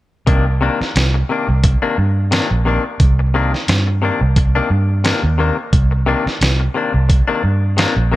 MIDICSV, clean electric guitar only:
0, 0, Header, 1, 3, 480
1, 0, Start_track
1, 0, Key_signature, -3, "minor"
1, 0, Tempo, 682439
1, 193, Time_signature, 4, 2, 24, 8
1, 5740, End_track
2, 0, Start_track
2, 0, Title_t, "Clean electric guitar"
2, 0, Program_c, 0, 27
2, 187, Note_on_c, 0, 48, 73
2, 192, Note_on_c, 0, 51, 80
2, 197, Note_on_c, 0, 58, 79
2, 201, Note_on_c, 0, 62, 77
2, 316, Note_off_c, 0, 62, 0
2, 321, Note_off_c, 0, 58, 0
2, 323, Note_off_c, 0, 48, 0
2, 325, Note_off_c, 0, 51, 0
2, 428, Note_on_c, 0, 48, 72
2, 434, Note_on_c, 0, 51, 68
2, 438, Note_on_c, 0, 58, 82
2, 442, Note_on_c, 0, 62, 83
2, 557, Note_off_c, 0, 62, 0
2, 562, Note_off_c, 0, 58, 0
2, 563, Note_off_c, 0, 48, 0
2, 566, Note_off_c, 0, 51, 0
2, 910, Note_on_c, 0, 48, 55
2, 917, Note_on_c, 0, 51, 52
2, 923, Note_on_c, 0, 58, 61
2, 929, Note_on_c, 0, 62, 64
2, 1037, Note_off_c, 0, 62, 0
2, 1041, Note_off_c, 0, 58, 0
2, 1044, Note_off_c, 0, 48, 0
2, 1046, Note_off_c, 0, 51, 0
2, 1281, Note_on_c, 0, 62, 65
2, 1286, Note_on_c, 0, 58, 68
2, 1290, Note_on_c, 0, 51, 56
2, 1295, Note_on_c, 0, 48, 56
2, 1382, Note_off_c, 0, 48, 0
2, 1386, Note_off_c, 0, 51, 0
2, 1389, Note_off_c, 0, 58, 0
2, 1390, Note_off_c, 0, 62, 0
2, 1626, Note_on_c, 0, 48, 54
2, 1632, Note_on_c, 0, 51, 60
2, 1638, Note_on_c, 0, 58, 62
2, 1645, Note_on_c, 0, 62, 66
2, 1752, Note_off_c, 0, 62, 0
2, 1757, Note_off_c, 0, 58, 0
2, 1762, Note_off_c, 0, 48, 0
2, 1762, Note_off_c, 0, 51, 0
2, 1866, Note_on_c, 0, 48, 60
2, 1874, Note_on_c, 0, 51, 68
2, 1880, Note_on_c, 0, 58, 67
2, 1887, Note_on_c, 0, 62, 70
2, 1992, Note_off_c, 0, 62, 0
2, 1998, Note_off_c, 0, 58, 0
2, 2002, Note_off_c, 0, 48, 0
2, 2003, Note_off_c, 0, 51, 0
2, 2351, Note_on_c, 0, 48, 74
2, 2355, Note_on_c, 0, 51, 84
2, 2362, Note_on_c, 0, 58, 84
2, 2365, Note_on_c, 0, 62, 80
2, 2474, Note_off_c, 0, 62, 0
2, 2480, Note_off_c, 0, 58, 0
2, 2484, Note_off_c, 0, 48, 0
2, 2484, Note_off_c, 0, 51, 0
2, 2826, Note_on_c, 0, 48, 60
2, 2834, Note_on_c, 0, 51, 61
2, 2840, Note_on_c, 0, 58, 60
2, 2846, Note_on_c, 0, 62, 67
2, 2956, Note_off_c, 0, 62, 0
2, 2962, Note_off_c, 0, 48, 0
2, 2963, Note_off_c, 0, 58, 0
2, 2966, Note_off_c, 0, 51, 0
2, 3202, Note_on_c, 0, 62, 66
2, 3208, Note_on_c, 0, 58, 69
2, 3212, Note_on_c, 0, 51, 60
2, 3216, Note_on_c, 0, 48, 60
2, 3302, Note_off_c, 0, 48, 0
2, 3305, Note_off_c, 0, 51, 0
2, 3308, Note_off_c, 0, 58, 0
2, 3310, Note_off_c, 0, 62, 0
2, 3546, Note_on_c, 0, 48, 53
2, 3553, Note_on_c, 0, 51, 65
2, 3561, Note_on_c, 0, 58, 70
2, 3567, Note_on_c, 0, 62, 62
2, 3670, Note_off_c, 0, 62, 0
2, 3677, Note_off_c, 0, 58, 0
2, 3680, Note_off_c, 0, 51, 0
2, 3682, Note_off_c, 0, 48, 0
2, 3784, Note_on_c, 0, 48, 59
2, 3793, Note_on_c, 0, 51, 70
2, 3799, Note_on_c, 0, 58, 74
2, 3805, Note_on_c, 0, 62, 67
2, 3912, Note_off_c, 0, 62, 0
2, 3918, Note_off_c, 0, 58, 0
2, 3921, Note_off_c, 0, 48, 0
2, 3922, Note_off_c, 0, 51, 0
2, 4265, Note_on_c, 0, 48, 85
2, 4273, Note_on_c, 0, 51, 88
2, 4277, Note_on_c, 0, 58, 85
2, 4280, Note_on_c, 0, 62, 88
2, 4394, Note_off_c, 0, 62, 0
2, 4400, Note_off_c, 0, 58, 0
2, 4401, Note_off_c, 0, 48, 0
2, 4405, Note_off_c, 0, 51, 0
2, 4744, Note_on_c, 0, 48, 51
2, 4751, Note_on_c, 0, 51, 55
2, 4759, Note_on_c, 0, 58, 57
2, 4764, Note_on_c, 0, 62, 68
2, 4870, Note_off_c, 0, 62, 0
2, 4876, Note_off_c, 0, 58, 0
2, 4880, Note_off_c, 0, 48, 0
2, 4880, Note_off_c, 0, 51, 0
2, 5117, Note_on_c, 0, 62, 75
2, 5124, Note_on_c, 0, 58, 63
2, 5128, Note_on_c, 0, 51, 71
2, 5133, Note_on_c, 0, 48, 55
2, 5219, Note_off_c, 0, 48, 0
2, 5222, Note_off_c, 0, 51, 0
2, 5226, Note_off_c, 0, 58, 0
2, 5228, Note_off_c, 0, 62, 0
2, 5465, Note_on_c, 0, 48, 59
2, 5472, Note_on_c, 0, 51, 62
2, 5479, Note_on_c, 0, 58, 68
2, 5485, Note_on_c, 0, 62, 71
2, 5589, Note_off_c, 0, 62, 0
2, 5596, Note_off_c, 0, 58, 0
2, 5601, Note_off_c, 0, 48, 0
2, 5601, Note_off_c, 0, 51, 0
2, 5708, Note_on_c, 0, 48, 60
2, 5715, Note_on_c, 0, 51, 73
2, 5740, Note_off_c, 0, 48, 0
2, 5740, Note_off_c, 0, 51, 0
2, 5740, End_track
3, 0, Start_track
3, 0, Title_t, "Muted clean electric guitar strokes"
3, 324, Note_on_c, 9, 29, 41
3, 395, Note_off_c, 9, 29, 0
3, 566, Note_on_c, 9, 29, 40
3, 636, Note_off_c, 9, 29, 0
3, 804, Note_on_c, 9, 29, 48
3, 874, Note_off_c, 9, 29, 0
3, 1046, Note_on_c, 9, 29, 39
3, 1116, Note_off_c, 9, 29, 0
3, 1152, Note_on_c, 9, 29, 35
3, 1222, Note_off_c, 9, 29, 0
3, 1391, Note_on_c, 9, 29, 40
3, 1461, Note_off_c, 9, 29, 0
3, 1760, Note_on_c, 9, 29, 38
3, 1830, Note_off_c, 9, 29, 0
3, 2001, Note_on_c, 9, 29, 43
3, 2071, Note_off_c, 9, 29, 0
3, 2246, Note_on_c, 9, 29, 40
3, 2316, Note_off_c, 9, 29, 0
3, 2483, Note_on_c, 9, 29, 46
3, 2553, Note_off_c, 9, 29, 0
3, 2723, Note_on_c, 9, 29, 38
3, 2794, Note_off_c, 9, 29, 0
3, 3071, Note_on_c, 9, 29, 39
3, 3141, Note_off_c, 9, 29, 0
3, 3310, Note_on_c, 9, 29, 41
3, 3381, Note_off_c, 9, 29, 0
3, 3679, Note_on_c, 9, 29, 38
3, 3749, Note_off_c, 9, 29, 0
3, 3921, Note_on_c, 9, 29, 47
3, 3991, Note_off_c, 9, 29, 0
3, 4158, Note_on_c, 9, 29, 37
3, 4229, Note_off_c, 9, 29, 0
3, 4402, Note_on_c, 9, 29, 47
3, 4472, Note_off_c, 9, 29, 0
3, 4641, Note_on_c, 9, 29, 48
3, 4711, Note_off_c, 9, 29, 0
3, 4878, Note_on_c, 9, 29, 38
3, 4949, Note_off_c, 9, 29, 0
3, 4986, Note_on_c, 9, 29, 47
3, 5056, Note_off_c, 9, 29, 0
3, 5227, Note_on_c, 9, 29, 41
3, 5298, Note_off_c, 9, 29, 0
3, 5598, Note_on_c, 9, 29, 47
3, 5668, Note_off_c, 9, 29, 0
3, 5740, End_track
0, 0, End_of_file